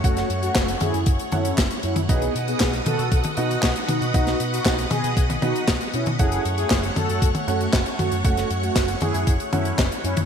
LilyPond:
<<
  \new Staff \with { instrumentName = "String machine" } { \time 4/4 \key fis \dorian \tempo 4 = 117 << { <a cis'' cis'''>1 | <b' dis'' dis'''>1~ | <b' dis'' dis'''>1 | <a cis'' cis'''>1~ |
<a cis'' cis'''>1 | } \\ { fis''1~ | fis''1~ | fis''1~ | fis''1~ |
fis''1 | } >> }
  \new Staff \with { instrumentName = "Grand piano" } { \time 4/4 \key fis \dorian <a cis' fis' fis''>2~ <a cis' fis' fis''>8 <cis' fis' a' fis''>8 r4 | <b dis' fis' dis''>2~ <b dis' fis' dis''>8 <b dis' fis' dis''>4. | <b dis' fis' dis''>2~ <b dis' fis' dis''>8 <b dis' fis' dis''>8 r4 | <cis' fis' a' fis''>2~ <cis' fis' a' fis''>8 <cis' fis' a' fis''>4. |
<a cis' fis' fis''>2~ <a cis' fis' fis''>8 <cis' fis' a' fis''>8 r4 | }
  \new Staff \with { instrumentName = "Analog polysynth" } { \time 4/4 \key fis \dorian <a fis'>8 r16 <a fis'>8 r16 <e' gis'>8. r16 <cis' e'>8. r16 <cis' e'>16 r16 | <b gis'>8 r16 <b gis'>8 r16 <fis' a'>8. r16 <dis' fis'>8. r16 <dis' fis'>16 r16 | <dis' fis'>8 r16 <dis' fis'>8 r16 <b gis'>8. r16 <dis' fis'>8. r16 <cis' e'>16 r16 | <e' gis'>8 r16 <e' gis'>8 r16 <fis' a'>8. r16 <a fis'>8. r16 <a fis'>16 r16 |
<a fis'>8 r16 <a fis'>8 r16 <e' gis'>8. r16 <cis' e'>8. r16 <cis' e'>16 r16 | }
  \new Staff \with { instrumentName = "Picked electric bass" } { \clef bass \time 4/4 \key fis \dorian fis,,16 r16 fis,16 r16 fis,,16 r16 fis,16 fis,16 fis,,16 r16 fis,16 r16 fis,,16 r16 fis,16 fis,16 | b,,16 r16 b,16 r16 b,,16 r16 b,16 b,16 b,,16 r16 b,16 r16 b,,16 r16 b,16 b,16 | b,,16 r16 b,16 r16 b,,16 r16 b,16 b,16 b,,16 r16 b,16 r16 b,,16 r16 b,16 b,16 | fis,,16 r16 fis,16 r16 fis,,16 r16 fis,16 fis,16 fis,,16 r16 fis,16 r16 fis,,16 r16 fis,16 fis,16 |
fis,,16 r16 fis,16 r16 fis,,16 r16 fis,16 fis,16 fis,,16 r16 fis,16 r16 fis,,16 r16 fis,16 fis,16 | }
  \new DrumStaff \with { instrumentName = "Drums" } \drummode { \time 4/4 <hh bd>16 <hh sn>16 hh16 hh16 <hc hh bd sn>16 hh16 <hh tommh>16 hh16 <hh bd>16 hh16 <hh tommh>16 hh16 <hc hh bd sn>16 hh16 hh16 <hh tommh>16 | <hh bd>16 hh16 hh16 hh16 <hc hh bd sn>16 hh16 <hh tommh>16 hh16 <hh bd>16 <hh tommh>16 hh16 hh16 <hc hh bd sn>16 hh16 <hh tommh>16 hh16 | <hh bd>16 <hh sn>16 hh16 hh16 <hc hh bd sn>16 hh16 <hh tommh>16 hh16 <hh bd>16 <hh tommh>16 <hh tommh>16 hh16 <hc hh bd sn>16 hh16 hh16 <hh tommh>16 | <hh bd>16 hh16 hh16 hh16 <hc hh bd sn>16 hh16 <hh tommh>16 hh16 <hh bd>16 <hh tommh>16 hh16 hh16 <hc hh bd sn>16 hh16 <hh tommh>16 hh16 |
<hh bd>16 <hh sn>16 hh16 hh16 <hc hh bd sn>16 hh16 <hh tommh>16 hh16 <hh bd>16 hh16 <hh tommh>16 hh16 <hc hh bd sn>16 hh16 hh16 <hh tommh>16 | }
>>